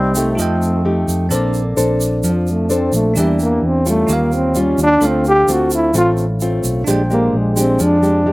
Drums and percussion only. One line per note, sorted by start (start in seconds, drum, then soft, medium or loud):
0.15 shaker medium
0.39 shaker medium
0.62 shaker soft
1.09 shaker medium
1.31 shaker medium
1.54 shaker soft
1.78 shaker medium
2.01 shaker medium
2.24 shaker medium
2.47 shaker soft
2.70 shaker soft
2.93 shaker medium
3.16 shaker medium
3.40 shaker soft
3.86 shaker medium
4.08 shaker medium
4.32 shaker soft
4.55 shaker soft
4.78 shaker medium
5.02 shaker medium
5.25 shaker soft
5.48 shaker medium
5.71 shaker medium
5.94 shaker medium
6.17 shaker soft
6.40 shaker medium
6.64 shaker medium
6.87 shaker medium
7.11 shaker soft
7.57 shaker medium
7.79 shaker medium
8.03 shaker soft